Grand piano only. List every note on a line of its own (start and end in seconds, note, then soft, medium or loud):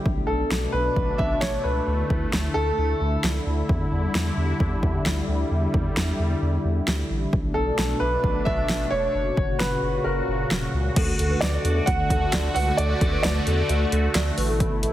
0.27 0.74 A4 medium
0.72 1.20 B4 medium
1.18 1.42 E5 medium
1.41 1.62 C#5 medium
1.64 2.28 B4 medium
2.54 3.19 A4 loud
7.54 8.02 A4 medium
8.00 8.47 B4 loud
8.45 8.93 E5 loud
8.91 9.55 C#5 medium
9.59 10.06 B4 medium
10.04 10.69 A#4 medium
11.41 11.88 D5 medium
11.86 12.29 F#5 loud
12.54 12.78 F#5 loud
12.77 13.21 D5 loud
13.23 13.87 D5 medium